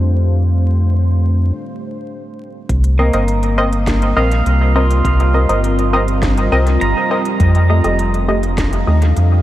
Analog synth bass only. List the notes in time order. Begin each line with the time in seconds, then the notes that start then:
Already playing: F2
2.69 C2
3.13 G1
4.17 A#1
4.46 C2
5.05 C2
5.49 G1
6.52 C2
6.81 G1
7.40 F2
7.84 F1
8.87 D#2
9.17 F2